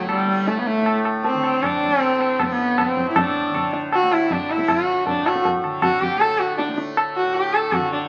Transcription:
0.00 0.80 A2 medium
0.00 1.34 D3 medium
0.00 0.26 A3 medium
0.09 0.49 G3 medium
0.09 tabla na medium
0.26 1.87 A3 medium
0.47 0.60 A3 medium
0.47 tabla te medium
0.60 0.68 B3 medium
0.67 1.05 A3 medium
0.67 tabla te medium
0.80 2.95 A2 medium
0.86 tabla na medium
1.05 tabla na medium
1.24 1.65 C4 medium
1.24 tabla tin medium
1.34 3.48 D3 medium
1.44 tabla na medium
1.63 2.00 D4 loud
1.63 tabla na medium
1.63 tabla ge medium
1.83 tabla ge medium
1.87 2.42 A3 medium
2.00 2.20 C4 loud
2.00 tabla na medium
2.20 2.41 C4 medium
2.20 tabla na medium
2.39 4.03 A3 medium
2.39 2.47 B3 medium
2.39 tabla na medium
2.39 tabla ge medium
2.45 2.53 C4 medium
2.52 2.80 B3 medium
2.58 tabla te medium
2.78 3.10 C4 medium
2.78 tabla na medium
2.78 tabla ge medium
2.95 5.08 A2 medium
2.95 tabla ge medium
3.10 3.19 E4 medium
3.16 3.74 D4 medium
3.16 tabla na loud
3.16 tabla ge loud
3.49 5.62 D3 medium
3.55 tabla na medium
3.55 tabla ge medium
3.73 tabla te medium
3.92 4.14 F#4 loud
3.92 tabla na medium
4.03 4.57 A3 medium
4.11 4.34 E4 medium
4.11 tabla na medium
4.31 4.52 D4 medium
4.31 tabla tin medium
4.31 tabla ge medium
4.49 4.72 E4 medium
4.49 tabla na medium
4.57 6.16 A3 medium
4.57 tabla ke medium
4.68 5.07 F#4 medium
4.68 tabla na medium
4.68 tabla ge medium
5.07 7.21 A2 medium
5.07 5.28 D4 medium
5.07 tabla tin medium
5.07 tabla ge medium
5.26 5.45 F#4 medium
5.26 tabla na medium
5.36 tabla ke medium
5.45 tabla tin medium
5.45 tabla ge medium
5.62 7.76 D3 medium
5.62 tabla na medium
5.82 6.03 F#4 medium
5.82 tabla na medium
5.82 tabla ge medium
6.01 6.21 G4 medium
6.01 tabla ge medium
6.16 6.68 A3 medium
6.16 6.40 A4 loud
6.21 tabla na medium
6.39 6.57 F#4 medium
6.58 6.76 D4 medium
6.58 tabla te medium
6.68 8.08 A3 medium
6.78 tabla te medium
6.97 tabla na medium
7.16 7.35 F#4 medium
7.22 8.08 A2 medium
7.34 7.55 G4 loud
7.34 tabla tin medium
7.54 7.75 A4 medium
7.54 tabla na medium
7.72 7.91 F#4 medium
7.72 tabla na medium
7.72 tabla ge medium
7.77 8.08 D3 medium
7.92 8.08 D4 medium

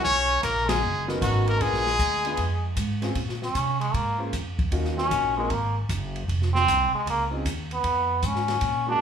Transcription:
0.01 0.42 B1 medium
0.01 0.39 C#4 medium
0.01 0.41 C#5 loud
0.01 kick soft
0.05 ride medium
0.42 0.81 A#1 loud
0.42 0.69 A#3 medium
0.42 0.70 A#4 medium
0.42 kick soft
0.42 hi-hat pedal medium
0.42 ride medium
0.67 1.07 G#3 medium
0.67 1.08 G#4 loud
0.67 snare medium
0.67 ride medium
0.83 1.20 F#1 medium
1.07 1.57 B3 medium
1.07 1.57 C#4 medium
1.07 1.58 D#4 medium
1.07 1.58 F#4 medium
1.07 1.58 A#4 medium
1.07 snare soft
1.20 1.59 G#1 loud
1.20 1.44 F#3 medium
1.20 1.46 F#4 medium
1.20 kick soft
1.20 hi-hat pedal medium
1.20 ride medium
1.45 1.61 A#3 medium
1.45 1.64 A#4 medium
1.45 ride soft
1.59 1.98 A#1 medium
1.59 2.77 G#3 medium
1.59 1.84 B3 medium
1.59 1.84 D4 medium
1.59 1.84 F4 medium
1.59 2.78 G#4 medium
1.59 1.84 G#4 medium
1.59 1.84 A#4 medium
1.59 kick soft
1.59 ride medium
1.74 snare soft
1.87 snare soft
1.99 2.37 D2 medium
1.99 kick soft
1.99 hi-hat pedal medium
1.99 ride medium
2.25 2.37 B3 medium
2.25 2.38 D4 medium
2.25 2.38 F4 medium
2.25 2.38 G#4 medium
2.25 2.38 B4 medium
2.25 ride medium
2.37 2.76 F2 medium
2.37 kick soft
2.37 ride medium
2.76 3.15 G#2 medium
2.76 kick soft
2.76 hi-hat pedal medium
2.76 ride medium
3.02 3.15 C4 medium
3.02 3.15 C#4 medium
3.02 3.15 F4 medium
3.02 3.15 G#4 medium
3.02 3.15 C5 medium
3.02 snare soft
3.02 ride soft
3.15 3.53 A#2 medium
3.15 kick soft
3.15 ride medium
3.29 snare soft
3.42 3.79 C#4 medium
3.42 snare soft
3.55 3.93 C3 medium
3.55 kick soft
3.55 hi-hat pedal soft
3.55 ride medium
3.80 3.96 G#3 medium
3.80 ride soft
3.94 4.32 G#2 medium
3.94 4.20 A#3 medium
3.94 kick soft
3.94 ride medium
4.18 4.31 A#3 medium
4.18 4.31 C#4 medium
4.18 4.32 F4 medium
4.18 4.32 G#4 medium
4.18 4.32 C5 medium
4.33 4.71 F2 medium
4.33 kick soft
4.33 hi-hat pedal medium
4.33 ride medium
4.59 kick medium
4.59 ride soft
4.71 5.10 D#2 medium
4.71 5.31 A#3 medium
4.71 5.31 C#4 medium
4.71 5.31 D#4 medium
4.71 5.32 F4 medium
4.71 5.32 F#4 medium
4.71 kick soft
4.71 ride medium
4.85 snare soft
4.97 5.34 C#4 medium
4.97 snare soft
5.11 5.49 A#1 medium
5.11 kick soft
5.11 hi-hat pedal medium
5.11 ride medium
5.37 5.53 G#3 medium
5.37 5.49 A#3 medium
5.37 5.49 C4 medium
5.37 5.50 D#4 medium
5.37 5.49 F#4 medium
5.37 5.50 A#4 medium
5.50 5.88 G#1 medium
5.50 5.77 A#3 medium
5.50 kick soft
5.50 ride medium
5.89 6.27 F#1 medium
5.89 kick soft
5.89 hi-hat pedal medium
5.89 ride medium
6.16 ride soft
6.28 6.66 F1 medium
6.28 kick soft
6.28 ride medium
6.42 snare soft
6.54 6.90 C4 loud
6.54 snare soft
6.68 6.91 C2 medium
6.68 kick soft
6.68 hi-hat pedal medium
6.68 ride medium
6.92 7.06 G#3 medium
6.92 muted upright bass stroke soft
7.06 7.44 C#2 medium
7.06 7.24 A#3 medium
7.06 kick soft
7.06 ride medium
7.31 7.43 C4 medium
7.31 7.43 C#4 medium
7.31 7.44 D#4 medium
7.31 7.44 F4 medium
7.31 7.44 G#4 medium
7.45 7.83 D#2 medium
7.45 kick soft
7.45 hi-hat pedal medium
7.45 ride medium
7.71 8.28 B3 medium
7.71 ride soft
7.84 8.22 F2 medium
7.84 kick soft
7.84 ride medium
8.22 8.61 G#2 medium
8.22 8.88 C#4 medium
8.22 kick soft
8.22 hi-hat pedal medium
8.22 ride medium
8.35 snare soft
8.48 snare soft
8.48 ride medium
8.61 9.00 A#2 medium
8.61 kick soft
8.61 ride medium
8.87 8.99 G#3 medium
8.87 9.00 A#3 medium
8.87 9.00 C#4 medium
8.87 9.00 D4 medium
8.87 9.01 D4 medium
8.87 9.00 F#4 medium

